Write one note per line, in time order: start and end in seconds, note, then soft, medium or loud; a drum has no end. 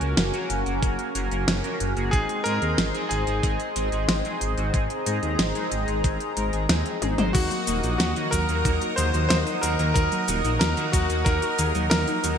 0.00 0.15 C#2 medium
0.00 0.29 A#3 medium
0.00 2.09 C#4 medium
0.00 0.29 C#4 medium
0.00 0.78 F#4 medium
0.00 2.09 F#4 medium
0.00 0.29 F#4 medium
0.00 2.09 A#4 medium
0.00 0.29 A#4 medium
0.00 2.10 G#5 medium
0.00 closed hi-hat soft
0.17 0.31 F#1 loud
0.17 snare loud
0.17 closed hi-hat medium
0.34 0.62 A#3 medium
0.34 0.62 C#4 medium
0.34 0.62 F#4 medium
0.34 0.62 A#4 loud
0.34 closed hi-hat soft
0.50 0.64 F#1 medium
0.50 closed hi-hat medium
0.66 0.80 F#1 medium
0.66 0.80 A#3 medium
0.66 0.80 C#4 medium
0.66 0.80 F#4 medium
0.66 0.80 A#4 medium
0.66 closed hi-hat soft
0.82 0.96 F#1 loud
0.82 1.10 A#3 medium
0.82 1.10 C#4 medium
0.82 1.10 F#4 medium
0.82 1.10 A#4 medium
0.82 kick loud
0.82 closed hi-hat medium
0.99 closed hi-hat soft
1.15 1.29 F#1 medium
1.15 1.27 A#3 medium
1.15 1.28 C#4 medium
1.15 1.27 F#4 medium
1.15 1.27 A#4 loud
1.15 closed hi-hat medium
1.31 1.45 F#1 medium
1.31 1.60 A#3 medium
1.31 1.60 C#4 medium
1.31 1.60 F#4 medium
1.31 1.60 A#4 medium
1.31 closed hi-hat soft
1.48 1.62 F#1 loud
1.48 snare loud
1.48 closed hi-hat medium
1.64 1.93 A#3 medium
1.64 1.93 C#4 medium
1.64 1.93 F#4 medium
1.64 1.93 A#4 medium
1.64 closed hi-hat soft
1.80 1.94 F#1 medium
1.80 closed hi-hat medium
1.97 2.11 F#1 medium
1.97 2.11 A#3 medium
1.97 2.11 C#4 medium
1.97 2.11 F#4 medium
1.97 2.11 G#4 loud
1.97 closed hi-hat soft
2.11 2.27 G#1 loud
2.11 2.42 G#3 medium
2.11 2.42 C4 medium
2.11 2.42 D#4 medium
2.11 2.46 G#4 loud
2.11 7.31 G#4 medium
2.11 2.42 G#4 medium
2.11 7.31 C5 medium
2.11 7.31 D#5 medium
2.11 4.71 C6 medium
2.11 kick loud
2.11 closed hi-hat medium
2.29 closed hi-hat soft
2.44 2.59 G#2 medium
2.44 2.58 G#3 medium
2.44 2.58 C4 medium
2.44 2.58 D#4 medium
2.44 2.58 G#4 loud
2.44 3.06 A#4 loud
2.44 closed hi-hat medium
2.62 2.76 D#2 medium
2.62 2.90 G#3 medium
2.62 2.90 C4 medium
2.62 2.90 D#4 medium
2.62 2.90 G#4 medium
2.62 closed hi-hat soft
2.78 2.92 G#1 loud
2.78 snare loud
2.78 closed hi-hat medium
2.94 3.23 G#3 medium
2.94 3.23 C4 medium
2.94 3.23 D#4 medium
2.94 3.23 G#4 loud
2.94 closed hi-hat soft
3.09 3.25 G#1 medium
3.09 6.65 G#4 medium
3.09 closed hi-hat medium
3.27 3.41 G#1 medium
3.27 3.41 G#3 medium
3.27 3.41 C4 medium
3.27 3.41 D#4 medium
3.27 3.41 G#4 medium
3.27 closed hi-hat soft
3.43 3.57 G#1 loud
3.43 3.71 G#3 medium
3.43 3.71 C4 medium
3.43 3.71 D#4 medium
3.43 3.71 G#4 medium
3.43 kick loud
3.43 closed hi-hat medium
3.60 closed hi-hat soft
3.76 3.90 G#1 medium
3.76 3.88 G#3 medium
3.76 3.88 C4 medium
3.76 3.88 D#4 medium
3.76 3.88 G#4 loud
3.76 closed hi-hat medium
3.92 4.06 G#1 medium
3.92 4.21 G#3 medium
3.92 4.21 C4 medium
3.92 4.21 D#4 medium
3.92 4.21 G#4 medium
3.92 closed hi-hat soft
4.09 4.23 G#1 loud
4.09 snare loud
4.09 closed hi-hat medium
4.25 4.54 G#3 medium
4.25 4.54 C4 medium
4.25 4.54 D#4 medium
4.25 4.54 G#4 medium
4.25 closed hi-hat soft
4.41 4.55 G#1 medium
4.41 closed hi-hat medium
4.57 4.71 G#1 medium
4.57 4.71 G#3 medium
4.57 4.71 C4 medium
4.57 4.71 D#4 medium
4.57 4.71 F#4 loud
4.57 closed hi-hat soft
4.74 4.88 G#1 loud
4.74 5.02 G#3 medium
4.74 5.02 C4 medium
4.74 5.02 D#4 medium
4.74 5.02 G#4 medium
4.74 7.32 A#5 medium
4.74 kick loud
4.74 closed hi-hat medium
4.90 closed hi-hat soft
5.06 5.20 G#2 medium
5.06 5.19 G#3 medium
5.06 5.19 C4 medium
5.06 5.19 D#4 medium
5.06 5.19 G#4 loud
5.06 closed hi-hat medium
5.23 5.37 D#2 medium
5.23 5.50 G#3 medium
5.23 5.50 C4 medium
5.23 5.50 D#4 medium
5.23 5.50 G#4 medium
5.23 closed hi-hat soft
5.39 5.53 G#1 loud
5.39 snare loud
5.39 closed hi-hat medium
5.55 5.84 G#3 medium
5.55 5.84 C4 medium
5.55 5.84 D#4 medium
5.55 5.84 G#4 loud
5.55 closed hi-hat soft
5.72 5.86 G#1 medium
5.72 closed hi-hat loud
5.88 6.02 G#1 medium
5.88 6.02 G#3 medium
5.88 6.02 C4 medium
5.88 6.02 D#4 medium
5.88 6.02 G#4 medium
5.88 closed hi-hat soft
6.04 6.18 G#1 loud
6.04 6.32 G#3 medium
6.04 6.32 C4 medium
6.04 6.32 D#4 medium
6.04 6.32 G#4 medium
6.04 kick loud
6.04 closed hi-hat medium
6.20 closed hi-hat soft
6.37 6.51 G#1 medium
6.37 6.51 G#3 medium
6.37 6.51 C4 medium
6.37 6.51 D#4 medium
6.37 6.51 A#4 medium
6.37 closed hi-hat medium
6.53 6.67 G#1 medium
6.53 6.66 G#3 medium
6.53 6.66 C4 medium
6.53 6.66 D#4 medium
6.53 6.66 G#4 medium
6.53 closed hi-hat soft
6.69 6.83 D#2 loud
6.69 6.97 G#3 medium
6.69 6.97 C4 medium
6.69 6.97 D#4 medium
6.69 6.97 G#4 medium
6.69 snare loud
6.69 closed hi-hat medium
6.86 closed hi-hat soft
7.02 7.16 G#1 medium
7.02 7.14 G#3 medium
7.02 7.14 C4 medium
7.02 7.14 D#4 medium
7.02 7.14 G#4 loud
7.02 closed hi-hat medium
7.02 high tom medium
7.18 7.32 G#1 medium
7.18 7.31 G#3 loud
7.18 7.31 C4 medium
7.18 7.31 D#4 medium
7.18 7.31 C5 loud
7.18 closed hi-hat soft
7.18 mid tom medium
7.33 7.49 D#2 loud
7.33 7.42 D#3 medium
7.33 7.63 F#3 medium
7.33 7.63 A#3 medium
7.33 7.63 D#4 medium
7.33 7.95 F#4 loud
7.33 7.95 F#4 medium
7.33 7.63 F#4 medium
7.33 12.38 A#4 medium
7.33 12.38 D#5 medium
7.33 12.38 F#5 medium
7.33 12.38 D#6 medium
7.33 kick loud
7.33 closed hi-hat medium
7.33 crash loud
7.33 shaker soft
7.51 7.66 F#3 medium
7.51 closed hi-hat soft
7.51 shaker soft
7.67 7.81 D#1 loud
7.67 7.80 F#3 loud
7.67 7.83 A#3 medium
7.67 7.80 A#3 medium
7.67 7.80 D#4 medium
7.67 7.80 F#4 loud
7.67 closed hi-hat loud
7.67 shaker medium
7.83 7.97 A#1 medium
7.83 8.11 F#3 medium
7.83 8.11 A#3 medium
7.83 7.90 D#4 medium
7.83 8.11 D#4 medium
7.83 8.11 F#4 medium
7.83 closed hi-hat soft
7.83 shaker soft
7.98 8.14 D#2 loud
7.98 8.33 F#4 medium
7.98 8.07 F#4 medium
7.98 snare loud
7.98 closed hi-hat medium
7.98 shaker soft
8.16 8.32 D#3 loud
8.16 8.45 F#3 loud
8.16 8.45 A#3 medium
8.16 8.45 D#4 medium
8.16 8.45 F#4 loud
8.16 closed hi-hat soft
8.16 shaker soft
8.31 8.46 D#2 loud
8.31 8.39 F#3 medium
8.31 8.99 A#4 medium
8.31 8.99 A#4 loud
8.31 kick medium
8.31 closed hi-hat loud
8.31 shaker medium
8.49 8.63 D#2 medium
8.49 8.63 F#3 medium
8.49 8.60 A#3 medium
8.49 8.63 A#3 medium
8.49 8.63 D#4 medium
8.49 8.63 F#4 medium
8.49 closed hi-hat soft
8.49 shaker soft
8.65 8.79 D#2 loud
8.65 8.93 F#3 medium
8.65 8.93 A#3 medium
8.65 8.77 D#4 loud
8.65 8.93 D#4 medium
8.65 8.93 F#4 medium
8.65 kick loud
8.65 closed hi-hat medium
8.65 shaker soft
8.81 8.93 F#4 medium
8.81 closed hi-hat soft
8.81 shaker soft
8.96 9.12 D#2 medium
8.96 9.05 D#3 medium
8.96 9.12 F#3 medium
8.96 9.12 A#3 medium
8.96 9.12 D#4 medium
8.96 9.12 G#4 medium
8.96 9.27 C5 medium
8.96 9.28 C5 loud
8.96 closed hi-hat loud
8.96 shaker medium
9.14 9.28 D#2 medium
9.14 9.21 F#3 medium
9.14 9.26 F#3 medium
9.14 9.26 A#3 medium
9.14 9.26 D#4 medium
9.14 9.26 F#4 medium
9.14 closed hi-hat soft
9.14 shaker soft
9.29 9.44 D#2 loud
9.29 9.58 F#3 medium
9.29 9.58 A#3 medium
9.29 9.37 A#3 medium
9.29 9.58 D#4 medium
9.29 9.58 F#4 medium
9.29 9.36 C5 loud
9.29 9.43 C5 loud
9.29 snare loud
9.29 closed hi-hat medium
9.29 shaker soft
9.47 9.62 D#4 loud
9.47 closed hi-hat soft
9.47 shaker soft
9.61 9.77 D#2 medium
9.61 9.75 F#3 medium
9.61 9.75 A#3 medium
9.61 9.75 D#4 medium
9.61 9.78 F#4 medium
9.61 9.75 F#4 loud
9.61 9.93 A#4 medium
9.61 closed hi-hat loud
9.61 shaker medium
9.79 9.93 D#2 medium
9.79 9.94 D#3 medium
9.79 9.92 F#3 loud
9.79 9.92 A#3 medium
9.79 9.92 D#4 medium
9.79 9.92 A#4 loud
9.79 closed hi-hat soft
9.79 shaker soft
9.94 10.09 D#2 loud
9.94 10.02 D#3 medium
9.94 10.24 F#3 medium
9.94 10.24 D#4 medium
9.94 10.24 F#4 medium
9.94 10.58 A#4 loud
9.94 kick loud
9.94 closed hi-hat medium
9.94 shaker soft
10.12 10.27 F#3 medium
10.12 closed hi-hat soft
10.12 shaker soft
10.28 10.42 D#1 loud
10.28 10.41 F#3 loud
10.28 10.41 A#3 medium
10.28 10.44 A#3 medium
10.28 10.41 D#4 medium
10.28 10.41 F#4 loud
10.28 closed hi-hat loud
10.28 shaker medium
10.44 10.58 A#1 medium
10.44 10.72 F#3 medium
10.44 10.72 A#3 medium
10.44 10.72 D#4 medium
10.44 10.51 D#4 medium
10.44 10.72 F#4 medium
10.44 closed hi-hat soft
10.44 shaker soft
10.59 10.75 D#2 loud
10.59 10.68 F#4 medium
10.59 10.90 A#4 loud
10.59 10.90 A#4 medium
10.59 snare loud
10.59 closed hi-hat medium
10.59 shaker soft
10.77 10.93 D#3 loud
10.77 11.06 F#3 medium
10.77 11.06 A#3 medium
10.77 11.06 D#4 medium
10.77 11.06 F#4 loud
10.77 closed hi-hat soft
10.77 shaker soft
10.92 11.07 D#2 loud
10.92 11.00 F#3 medium
10.92 11.26 F#4 medium
10.92 kick loud
10.92 closed hi-hat loud
10.92 shaker medium
11.10 11.24 D#2 medium
11.10 11.24 F#3 medium
11.10 11.24 A#3 medium
11.10 11.21 A#3 medium
11.10 11.24 D#4 medium
11.10 11.24 F#4 medium
11.10 closed hi-hat soft
11.10 shaker soft
11.24 11.40 D#2 loud
11.24 11.54 F#3 medium
11.24 11.54 A#3 medium
11.24 11.54 D#4 medium
11.24 11.37 D#4 loud
11.24 11.54 F#4 medium
11.24 11.89 A#4 loud
11.24 11.88 A#4 loud
11.24 kick loud
11.24 closed hi-hat medium
11.24 shaker soft
11.42 11.54 F#4 medium
11.42 closed hi-hat soft
11.42 shaker soft
11.59 11.73 D#2 loud
11.59 11.65 D#3 medium
11.59 11.72 F#3 medium
11.59 11.72 A#3 medium
11.59 11.72 D#4 medium
11.59 11.72 G#4 medium
11.59 closed hi-hat loud
11.59 shaker medium
11.75 11.89 D#2 medium
11.75 11.87 F#3 medium
11.75 11.82 F#3 medium
11.75 11.87 A#3 medium
11.75 11.87 D#4 medium
11.75 11.87 F#4 medium
11.75 closed hi-hat soft
11.75 shaker soft
11.90 12.05 D#2 loud
11.90 11.98 A#3 medium
11.90 12.19 F#4 medium
11.90 12.36 A#4 loud
11.90 snare loud
11.90 closed hi-hat medium
11.90 shaker soft
12.07 12.23 D#4 loud
12.07 closed hi-hat soft
12.07 shaker soft
12.24 12.38 D#2 medium
12.24 12.36 F#3 medium
12.24 12.36 A#3 medium
12.24 12.36 D#4 medium
12.24 12.36 F#4 loud
12.24 12.38 F#4 medium
12.24 closed hi-hat loud
12.24 shaker medium